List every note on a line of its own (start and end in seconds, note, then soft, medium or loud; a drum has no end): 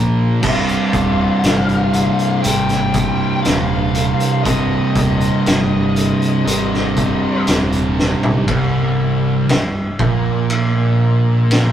0.00 0.40 A#2 medium
0.00 0.40 F3 loud
0.00 0.40 F3 medium
0.00 0.41 A#3 medium
0.42 0.76 C1 loud
0.42 2.44 C2 loud
0.42 2.42 G2 loud
0.42 2.47 C3 loud
0.42 2.50 F5 loud
0.42 kick loud
0.42 crash loud
0.68 closed hi-hat soft
0.93 1.26 D#1 medium
0.93 kick medium
0.93 closed hi-hat medium
1.43 2.09 G1 medium
1.43 snare loud
1.43 closed hi-hat loud
1.69 closed hi-hat soft
1.93 closed hi-hat medium
2.19 closed hi-hat soft
2.43 3.11 G#1 loud
2.43 4.45 C2 medium
2.43 4.43 G2 medium
2.43 3.47 G5 loud
2.43 closed hi-hat loud
2.47 4.47 C3 medium
2.69 snare soft
2.69 closed hi-hat soft
2.94 kick loud
2.94 closed hi-hat medium
3.42 4.40 F5 loud
3.42 snare loud
3.42 closed hi-hat loud
3.47 4.12 D#1 loud
3.95 closed hi-hat medium
4.20 closed hi-hat medium
4.43 4.78 C1 medium
4.43 6.43 C2 medium
4.43 6.44 G2 loud
4.43 7.42 D#5 medium
4.43 kick loud
4.43 closed hi-hat loud
4.48 6.45 C3 loud
4.95 5.29 D#1 medium
4.95 kick medium
4.95 closed hi-hat medium
5.21 closed hi-hat medium
5.46 6.12 G1 medium
5.46 snare loud
5.46 closed hi-hat loud
5.96 closed hi-hat medium
6.22 closed hi-hat soft
6.46 7.12 G#1 medium
6.46 8.44 C2 medium
6.46 8.45 G2 medium
6.46 8.46 C3 loud
6.46 closed hi-hat loud
6.74 snare soft
6.96 kick medium
6.96 closed hi-hat medium
7.47 8.13 D#1 medium
7.47 snare loud
7.47 closed hi-hat loud
7.72 closed hi-hat medium
7.99 snare medium
8.23 floor tom loud
8.48 9.45 C1 loud
8.48 9.47 C2 loud
8.48 kick loud
8.48 ride bell medium
9.48 9.96 C1 medium
9.48 9.89 C2 medium
9.48 snare loud
9.48 ride bell medium
9.99 11.72 A#1 loud
9.99 11.72 A#2 loud
9.99 kick loud
10.50 ride bell medium
11.51 snare loud
11.51 ride bell medium